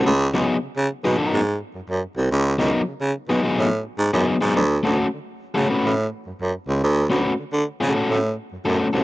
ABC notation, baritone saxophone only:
X:1
M:4/4
L:1/16
Q:1/4=106
K:C#dor
V:1 name="Baritone saxophone" clef=bass
C,,2 C,, z C, C, z B,, G,, G,,2 z F,, F,, z ^B,,, | C,,2 C,, z C, C, z B,, =A,, A,,2 z G,, F,, z G,, | =D,,2 D,, z =D, z2 C, =A,, A,,2 z F,, F,, z C,, | =D,,2 D,, z =D, D, z C, =A,, A,,2 z F,, F,, z ^B,,, |]